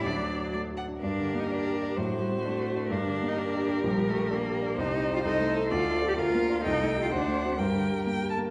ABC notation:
X:1
M:2/4
L:1/16
Q:1/4=127
K:D
V:1 name="Violin"
d4 d2 f2 | [K:Gm] B8 | c8 | B8- |
B8 | c8 | d4 f4 | g4 ^f4 |
g4 g2 a2 |]
V:2 name="Viola"
F,6 z2 | [K:Gm] G8 | ^F8 | G8- |
G8 | G4 A4- | A4 B4 | A4 c4 |
B6 z2 |]
V:3 name="Cello"
D4 z4 | [K:Gm] D3 E D4 | ^F,2 G,2 A,4 | D3 E D4 |
G,2 A,2 B,4 | E3 F E4 | F3 G F4 | E3 F D3 A, |
G,4 z4 |]
V:4 name="Grand piano"
(3D,,2 A,2 F2 (3A,2 F2 D2 | [K:Gm] (3G,,2 D,2 B,2 (3D2 G2 D2 | (3A,,2 A,2 C2 (3D2 ^F2 D2 | (3G,,2 D,2 B,2 (3D2 G2 D2 |
(3B,,,2 B,,2 G,2 (3D2 G2 D2 | (3C,,2 C2 [EG]2 (3C,,2 A,2 [EA]2 | (3D,,2 A,2 [DA]2 (3D,,2 B,2 [DF]2 | (3C,,2 A,2 [EG]2 (3D,,2 A,2 [C^F]2 |
(3G,,2 D,2 G,2 (3B,2 G2 B,2 |]